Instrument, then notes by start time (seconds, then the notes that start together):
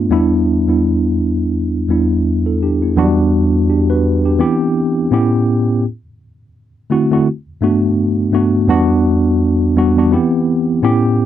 tine electric piano
Already playing: G2 A3 B3 D4 F4
0.10 E2 G3 B3 D4 E4
0.67 E2 G3 B3 D4 E4
1.89 E2 G3 B3 D4 E4
2.46 E4 A4
2.63 D4 G4
2.82 B3 E4
2.96 E2 F#3 B3 D4 F#4
3.04 G3
3.69 D4 G4
3.90 F#4 B4
4.25 D4 G4
4.39 E3 B3 C4 E4 G4
5.11 A2 B3 C#4 E4 G4
6.90 D3 A3 C4 E4 F#4
7.11 D3 A3 C4 E4 F#4
7.61 G2 A3 B3 D4 F#4
8.32 G2 A3 B3 D4 F#4
8.68 E2 G3 B3 D4 F#4
9.76 E2 G3 B3 D4 F#4
9.96 E2 G3 B3 D4 F#4
10.11 E3 B3 C4 E4 G4
10.82 A2 B3 C#4 E4 G4